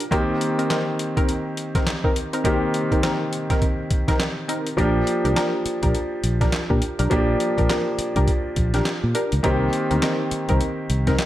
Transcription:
0.00 closed hi-hat
0.11 D#3 A#3 C4 D#4 G4 A#4, kick, closed hi-hat
0.41 closed hi-hat
0.58 C4 D#4 A#4, closed hi-hat
0.70 C4 D#4 A#4, snare, clap, closed hi-hat
0.99 closed hi-hat
1.17 C4 D#4 A#4, kick, closed hi-hat
1.29 closed hi-hat
1.57 closed hi-hat
1.75 C4 D#4 A#4, kick, snare, closed hi-hat
1.87 snare, clap, closed hi-hat
2.04 C4 D#4 A#4, kick
2.16 closed hi-hat
2.33 C4 D#4 A#4, closed hi-hat
2.44 D#3 A#3 C4 D#4 G4 A#4, kick, closed hi-hat
2.74 closed hi-hat
2.91 C4 D#4 A#4, kick, closed hi-hat
3.03 C4 D#4 A#4, snare, clap, closed hi-hat
3.33 closed hi-hat
3.50 C4 D#4 A#4, kick, snare, closed hi-hat
3.62 kick, closed hi-hat
3.91 kick, closed hi-hat
4.08 C4 D#4 A#4, kick, snare, closed hi-hat
4.20 snare, clap, closed hi-hat
4.48 C4 D#4 A#4, closed hi-hat
4.67 closed hi-hat
4.77 A#1 F3 A#3 D4 G4 A#4, kick, closed hi-hat
5.07 closed hi-hat
5.25 C2 D4 G4 A#4, closed hi-hat
5.36 D4 G4 A#4, snare, clap, closed hi-hat
5.65 muted fingered electric bass stroke, closed hi-hat
5.83 A#1 D4 G4 A#4, kick, closed hi-hat
5.95 closed hi-hat
6.24 A#1, closed hi-hat
6.41 D4 G4 A#4, kick, snare, closed hi-hat
6.52 snare, clap, closed hi-hat
6.70 A#2 D4 G4 A#4, kick
6.82 closed hi-hat
6.99 B1 D4 G4 A#4, closed hi-hat
7.10 A#1 F3 A#3 D4 G4 A#4, kick, closed hi-hat
7.40 closed hi-hat
7.58 A#1 D4 G4 A#4, kick, closed hi-hat
7.69 D4 G4 A#4, snare, clap, closed hi-hat
7.98 muted fingered electric bass stroke, closed hi-hat
8.16 C2 D4 G4 A#4, kick, closed hi-hat
8.28 kick, closed hi-hat
8.56 A#1, kick, closed hi-hat
8.74 D4 G4 A#4, snare, closed hi-hat
8.85 snare, clap, closed hi-hat
9.04 A#2
9.15 D4 G4 A#4, closed hi-hat
9.32 C#2, closed hi-hat
9.43 C2 D#3 A#3 C4 D#4 G4 A#4, kick, closed hi-hat
9.73 closed hi-hat
9.90 D2 C4 D#4 A#4, closed hi-hat
10.02 C4 D#4 A#4, snare, clap, closed hi-hat
10.31 muted fingered electric bass stroke, closed hi-hat
10.49 C2 C4 D#4 A#4, kick, closed hi-hat
10.61 closed hi-hat
10.90 C2, closed hi-hat
11.07 C4 D#4 A#4, kick, snare, closed hi-hat
11.19 snare, clap, closed hi-hat

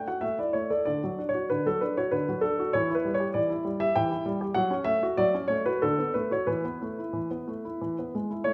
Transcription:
0.08 F#4 F#5
0.21 A3 E5
0.38 E4 D5
0.53 A3 C#5
0.70 A4 D5
0.85 D3 D5
1.04 F#3
1.19 D4
1.29 C#5
1.34 F#4
1.50 D3 B4
1.66 F#3 A4
1.81 D4 B4
1.97 F#4 C#5
2.11 D3 B4
2.29 F#3
2.41 D4 A4
2.59 F#4
2.73 E3 C#5
2.90 E4
2.95 B4
3.05 G3
3.14 C#5
3.20 G4
3.34 E3 D5
3.50 E4
3.65 G3
3.80 G4 E5
3.96 E3 G5
4.12 E4
4.26 G3
4.41 G4
4.54 F#3 F#5
4.71 C#4
4.84 A3 E5
5.03 F#4
5.17 F#3 D5
5.34 C#4
5.48 A3 C#5
5.66 F#4 B4
5.82 D3 A4
5.99 B3
6.14 A3 B4
6.31 F#4 C#5
6.47 E3 B4
6.64 B3
6.82 A3
6.99 E4
7.13 E3
7.31 B3
7.48 A3
7.65 E4
7.81 E3
7.99 B3
8.15 G#3
8.30 E4
8.44 A3 C#5

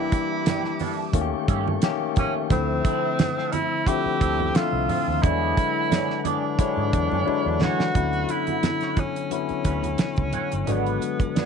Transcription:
Already playing: E3 G3 A#3 D4 E4 G4 E5 D6
0.12 kick, closed hi-hat, muted conga
0.32 muted clean electric guitar stroke
0.46 A#3 D4 G4, snare, closed hi-hat, high conga
0.64 muted clean electric guitar stroke, snare
0.79 A#3 D4 A4, open hi-hat, high conga
0.99 muted clean electric guitar stroke
1.13 D#2 D#3 A3 A#3 C#4 F#4 A4 G5 C#6, kick, closed hi-hat, muted conga
1.21 G4
1.32 muted clean electric guitar stroke, muted fingered electric bass stroke
1.48 G2 A3 C#4 G4, kick, closed hi-hat, muted conga
1.68 muted clean electric guitar stroke, high conga
1.82 D#3 A3 A#3 C#4 G4, snare, closed hi-hat, muted conga
2.01 muted clean electric guitar stroke
2.16 A3 C#4 G4, kick, closed hi-hat, muted conga, low conga
2.37 muted clean electric guitar stroke
2.50 D2 D3 F3 A3 C4 E4 C5 E5 E6, kick, closed hi-hat, low conga
2.85 F3 C4 E4, kick, closed hi-hat
3.19 muted clean electric guitar stroke, snare, closed hi-hat, muted conga, high conga
3.38 F3 C4 F4, snare
3.52 E4, muted clean electric guitar stroke, closed hi-hat, high conga
3.72 muted clean electric guitar stroke
3.86 D3 F3 A3 C4 E4 G4, muted clean electric guitar stroke, kick, closed hi-hat, muted conga
4.05 muted clean electric guitar stroke, muted fingered electric bass stroke
4.20 D2 F3 C4 E4, kick, closed hi-hat
4.39 muted clean electric guitar stroke, high conga
4.55 D3 F3 A3 C4 F4 E5, muted fingered electric bass stroke, snare, closed hi-hat
4.73 C2, muted clean electric guitar stroke
4.89 F3 C4 F4, open hi-hat, muted conga, low conga
5.07 D#2, muted clean electric guitar stroke
5.22 E2 D3 F#3 G#3 D4 E4 G#4 B4 C#5 F#5 G#5, kick, closed hi-hat, muted conga, low conga
5.57 kick, closed hi-hat, muted conga
5.76 muted clean electric guitar stroke
5.90 D4 G#4 C#5, snare, closed hi-hat, high conga
6.09 muted clean electric guitar stroke, snare
6.21 D4 E4 G#4 D5, closed hi-hat, high conga
6.27 D4
6.43 muted clean electric guitar stroke
6.59 D3 F#3 G#3 D4 E4 G#4 C#5, kick, closed hi-hat
6.77 G#2
6.93 E2, muted clean electric guitar stroke, kick, closed hi-hat
7.12 F#2 D4 G#4 C#5, high conga
7.26 D3 F#3 G#3 E4 C#5, muted fingered electric bass stroke, muted conga
7.46 E2, muted clean electric guitar stroke
7.61 E3 D4 F#4 G#4 C#5, snare, low conga
7.80 muted clean electric guitar stroke, snare
7.95 D2 D3 F#3 B3 C#4 E4, kick, closed hi-hat, low conga
8.13 closed hi-hat
8.29 C#4 E4 F#4 B4, closed hi-hat, muted conga
8.47 closed hi-hat, high conga
8.63 muted clean electric guitar stroke, snare, closed hi-hat, muted conga, high conga
8.81 C#4 F#4 C#5, snare, closed hi-hat
8.97 C#4, muted clean electric guitar stroke, kick, closed hi-hat, muted conga, high conga
9.16 muted clean electric guitar stroke, closed hi-hat
9.31 D3 F#3 B3 C#4 E4, muted clean electric guitar stroke, closed hi-hat, muted conga
9.49 muted clean electric guitar stroke, muted fingered electric bass stroke, closed hi-hat
9.65 D2 C#4 F#4 B4, kick, closed hi-hat, muted conga
9.83 muted clean electric guitar stroke, closed hi-hat, high conga
9.98 muted clean electric guitar stroke, muted fingered electric bass stroke, snare, closed hi-hat, muted conga
10.16 C#2, muted clean electric guitar stroke, kick, closed hi-hat
10.33 C#4 F#4 C#5, closed hi-hat, low conga
10.51 G1, muted clean electric guitar stroke, closed hi-hat
10.66 G#1 D3 F#3 G#3 B3 D4 F#4 B4, closed hi-hat, low conga
10.71 B3
10.86 closed hi-hat
11.01 closed hi-hat, muted conga
11.20 muted clean electric guitar stroke, kick, closed hi-hat, high conga
11.35 D4 F#4 B4, snare, closed hi-hat, high conga

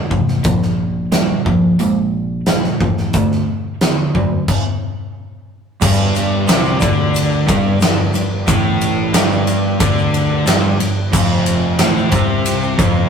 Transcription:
0.11 A1 F2 C3, kick
0.28 snare
0.43 A#1 A#2 F3, kick, closed hi-hat
0.63 snare
1.12 A#2 G3, snare, closed hi-hat
1.46 A#1 A#2 F3, kick
1.79 A#1 A#2 G#3, closed hi-hat
2.46 A#2 G3, snare, closed hi-hat
2.64 snare
2.81 A1 A#2 F3, kick
2.98 snare
3.13 D2 D3 A3, kick, closed hi-hat
3.32 snare
3.81 D3 B3, snare, closed hi-hat
4.14 F#2 D3 A3, kick
4.48 kick, crash
5.82 G1 G2 D4 G4 B4 D5, kick, crash, shaker
6.15 ride, shaker
6.48 C2 C3, snare, ride, shaker
6.65 shaker
6.80 D2 D3, kick, ride, shaker
7.15 ride, shaker
7.32 shaker
7.47 G1 G2, kick, ride, shaker
7.81 G1 G2, snare, ride, shaker
8.14 G1 G2, ride, shaker
8.47 A1 A2 D4 G4 B4, kick, ride, shaker
8.81 ride, shaker
9.12 G1 G2, snare, ride, shaker
9.32 shaker
9.47 ride, shaker
9.80 D2 D3, kick, ride, shaker
9.98 shaker
10.14 ride
10.46 G1 G2, snare, ride, shaker
10.80 G1 G2, ride
11.12 F1 F2 C4 F4 C5 F5, kick, crash, shaker
11.46 ride, shaker
11.79 A1 A2, snare, ride, shaker
11.97 shaker
12.12 C2 C3, kick, ride, shaker
12.46 ride, shaker
12.63 shaker
12.78 F1 F2, kick, ride, shaker

